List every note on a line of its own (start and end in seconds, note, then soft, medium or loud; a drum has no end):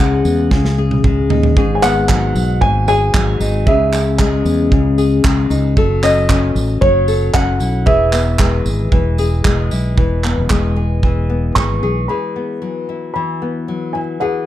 0.00 0.21 C#2 loud
0.00 0.50 C#3 medium
0.00 1.04 G#3 medium
0.00 1.62 C#4 medium
0.00 1.29 E4 medium
0.00 0.78 G#4 medium
0.00 0.60 F#5 medium
0.25 0.49 E2 medium
0.25 tambourine medium
0.51 1.00 C#2 medium
0.51 1.56 C#3 medium
0.51 kick loud
0.51 snare medium
0.65 snare medium
0.78 1.57 G#4 medium
0.91 high tom medium
1.04 1.28 C#2 medium
1.04 2.09 G#3 medium
1.04 kick loud
1.04 mid tom medium
1.30 1.55 D#2 medium
1.30 3.40 D#4 medium
1.30 floor tom loud
1.43 floor tom loud
1.56 2.31 G#1 loud
1.56 2.61 G#2 medium
1.56 2.88 G#4 medium
1.56 kick loud
1.75 1.82 G#5 medium
1.82 3.72 B3 medium
1.82 2.64 F#5 loud
1.82 clap loud
1.82 tambourine medium
2.09 3.13 F#3 medium
2.09 kick loud
2.09 clap loud
2.35 2.59 B1 medium
2.35 tambourine medium
2.61 3.10 G#1 loud
2.61 3.67 G#2 medium
2.61 2.87 G#5 loud
2.61 kick loud
2.88 3.67 G#4 medium
2.88 3.69 G#5 loud
2.88 tambourine medium
3.14 3.38 G#1 loud
3.14 3.72 F#3 medium
3.14 kick loud
3.14 clap loud
3.40 3.64 G#1 medium
3.40 3.97 D#4 medium
3.40 tambourine medium
3.67 4.42 C#2 loud
3.67 4.71 C#3 medium
3.67 4.97 G#4 medium
3.67 4.68 E5 medium
3.67 kick loud
3.93 6.02 C#4 medium
3.93 clap medium
3.93 tambourine medium
4.19 5.23 G#3 medium
4.19 kick loud
4.19 clap loud
4.45 4.69 E2 loud
4.45 tambourine medium
4.72 5.20 C#2 loud
4.72 5.82 C#3 medium
4.72 kick loud
4.98 5.77 G#4 medium
4.98 tambourine medium
5.24 5.48 C#2 loud
5.24 5.76 G#3 medium
5.24 kick loud
5.24 clap loud
5.50 5.75 C#2 medium
5.50 5.82 D#4 medium
5.50 tambourine medium
5.77 6.52 F#1 medium
5.77 6.80 F#3 medium
5.77 7.07 A4 medium
5.77 kick loud
6.03 6.28 C#4 medium
6.03 6.78 D#5 loud
6.03 clap medium
6.03 tambourine medium
6.29 7.33 C#4 medium
6.29 kick loud
6.29 clap loud
6.55 6.80 A1 medium
6.55 tambourine medium
6.81 7.30 F#1 loud
6.81 7.92 F#3 medium
6.81 7.36 C#5 loud
6.81 kick loud
7.08 7.86 A4 medium
7.08 tambourine medium
7.34 7.59 F#1 medium
7.34 7.92 C#4 medium
7.34 7.83 F#5 loud
7.34 kick loud
7.34 clap loud
7.60 7.85 B1 medium
7.60 9.71 E4 medium
7.60 tambourine medium
7.86 8.62 E1 loud
7.86 8.91 E3 medium
7.86 9.18 G#4 medium
7.86 9.40 E5 medium
7.86 kick loud
8.13 10.24 B3 medium
8.13 clap loud
8.13 tambourine medium
8.39 9.44 G#3 medium
8.39 kick loud
8.39 clap loud
8.66 8.90 G#1 medium
8.66 tambourine medium
8.92 9.41 E1 loud
8.92 9.97 E3 medium
8.92 kick loud
9.18 10.76 G#4 medium
9.18 tambourine medium
9.44 9.69 E1 medium
9.44 10.50 G#3 medium
9.44 kick loud
9.44 clap loud
9.71 9.95 B1 medium
9.71 12.65 E4 medium
9.71 tambourine medium
9.97 10.34 E1 medium
9.97 11.03 E3 medium
9.97 kick loud
10.24 11.29 B3 medium
10.24 clap medium
10.38 10.49 E1 medium
10.50 11.52 E1 medium
10.50 11.55 G#3 medium
10.50 kick medium
10.50 clap loud
10.76 11.82 G#4 medium
11.03 12.09 E3 medium
11.03 kick loud
11.30 12.35 B3 medium
11.55 11.80 G#1 medium
11.55 12.61 G#3 medium
11.55 12.10 C#6 medium
11.55 kick loud
11.55 clap loud
11.83 12.07 B1 medium
11.83 12.09 G#4 medium
12.08 13.15 E3 medium
12.08 14.20 G#4 soft
12.08 13.10 B5 medium
12.36 13.41 B3 soft
12.62 13.67 F#3 medium
12.89 13.94 E4 soft
13.14 14.20 E3 medium
13.14 13.96 B5 medium
13.42 14.46 B3 soft
13.68 14.46 F#3 soft
13.93 14.46 E4 soft
13.93 13.99 G#5 medium
14.20 14.46 E3 medium
14.20 14.46 G#4 medium
14.20 14.46 F#5 medium